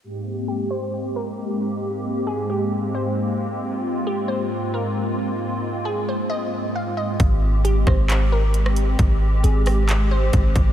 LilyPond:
<<
  \new Staff \with { instrumentName = "Synth pluck" } { \time 4/4 \key aes \major \tempo 4 = 134 r4 g'8 c''4 bes'4. | r4 aes'8 g'4 c''4. | r4 g'8 c''4 bes'4. | r4 aes'8 c''8 ees''4 f''8 ees''8 |
r4 g'8 c''4 bes'4. | r4 aes'8 g'4 c''4. | }
  \new Staff \with { instrumentName = "Analog synth pad" } { \time 4/4 \key aes \major << { g'1~ | g'1 | f'1~ | f'1 |
g'1~ | g'1 | } \\ { <aes, aes bes c'>1~ | <aes, aes bes c'>1~ | <aes, aes bes c'>1~ | <aes, aes bes c'>1 |
<aes c'>1~ | <aes c'>1 | } >> }
  \new Staff \with { instrumentName = "808-style bass" } { \clef bass \time 4/4 \key aes \major r1 | r1 | r1 | r1 |
aes,,4. aes,,2~ aes,,8 | aes,,4 aes,,2 aes,,8 aes,,8 | }
  \new DrumStaff \with { instrumentName = "Drums" } \drummode { \time 4/4 r4 r4 r4 r4 | r4 r4 r4 r4 | r4 r4 r4 r4 | r4 r4 r4 r4 |
<hh bd>4 hh8 <bd ss>8 <hc hh>4 hh16 ss16 hh8 | <hh bd>4 hh8 <hho ss>8 <hc hh>4 <hh bd>8 <hh bd>8 | }
>>